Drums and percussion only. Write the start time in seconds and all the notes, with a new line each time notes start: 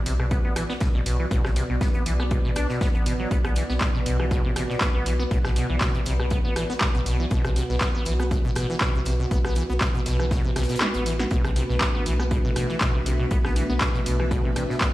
0.06 closed hi-hat, open hi-hat
0.20 cross-stick
0.31 kick, closed hi-hat
0.56 cross-stick, closed hi-hat, open hi-hat
0.69 snare
0.80 kick, snare, closed hi-hat
1.06 closed hi-hat, open hi-hat
1.31 kick, closed hi-hat
1.45 cross-stick, snare
1.56 closed hi-hat, open hi-hat
1.81 kick, snare, closed hi-hat
1.94 closed hi-hat
2.06 closed hi-hat, open hi-hat
2.20 cross-stick
2.31 kick, closed hi-hat
2.56 cross-stick, closed hi-hat, open hi-hat
2.69 snare
2.81 kick, snare, closed hi-hat
2.95 closed hi-hat
3.06 closed hi-hat, open hi-hat
3.31 kick, closed hi-hat
3.45 cross-stick, closed hi-hat
3.56 closed hi-hat, open hi-hat
3.70 snare
3.81 kick, snare, clap, closed hi-hat
4.06 closed hi-hat, open hi-hat
4.20 cross-stick
4.31 kick, closed hi-hat
4.56 cross-stick, closed hi-hat, open hi-hat
4.70 snare
4.81 kick, snare, clap, closed hi-hat
5.06 closed hi-hat, open hi-hat
5.31 kick, closed hi-hat
5.44 cross-stick, snare
5.56 closed hi-hat, open hi-hat
5.81 kick, snare, clap, closed hi-hat
5.94 closed hi-hat
6.06 closed hi-hat, open hi-hat
6.20 cross-stick
6.30 kick, closed hi-hat
6.56 cross-stick, closed hi-hat, open hi-hat
6.70 snare
6.81 kick, snare, clap, closed hi-hat
6.95 closed hi-hat
7.06 closed hi-hat, open hi-hat
7.31 kick, closed hi-hat
7.45 cross-stick, closed hi-hat
7.56 closed hi-hat, open hi-hat
7.69 snare
7.81 kick, snare, clap, closed hi-hat
8.05 closed hi-hat, open hi-hat
8.20 cross-stick
8.31 kick, closed hi-hat
8.55 cross-stick, closed hi-hat, open hi-hat
8.70 snare
8.81 kick, snare, clap, closed hi-hat
9.05 closed hi-hat, open hi-hat
9.31 kick, closed hi-hat
9.45 cross-stick, snare
9.55 closed hi-hat, open hi-hat
9.81 kick, snare, clap, closed hi-hat
9.95 closed hi-hat
10.06 snare, closed hi-hat, open hi-hat
10.20 cross-stick
10.31 kick, snare, closed hi-hat
10.56 cross-stick, snare, closed hi-hat, open hi-hat
10.63 snare, closed hi-hat
10.69 snare, closed hi-hat
10.75 snare, closed hi-hat
10.81 snare, clap
10.94 closed hi-hat
11.06 closed hi-hat, open hi-hat
11.19 snare
11.31 kick, closed hi-hat
11.44 cross-stick, closed hi-hat
11.56 closed hi-hat, open hi-hat
11.70 snare
11.81 kick, snare, clap, closed hi-hat
12.06 closed hi-hat, open hi-hat
12.20 cross-stick
12.31 kick, closed hi-hat
12.56 cross-stick, closed hi-hat, open hi-hat
12.69 snare
12.81 kick, snare, clap, closed hi-hat
13.06 closed hi-hat, open hi-hat
13.31 kick, closed hi-hat
13.45 cross-stick, snare
13.56 closed hi-hat, open hi-hat
13.81 kick, snare, clap, closed hi-hat
13.95 closed hi-hat
14.06 closed hi-hat, open hi-hat
14.20 cross-stick
14.31 kick, closed hi-hat
14.56 cross-stick, closed hi-hat, open hi-hat
14.70 snare
14.81 kick, snare, clap, closed hi-hat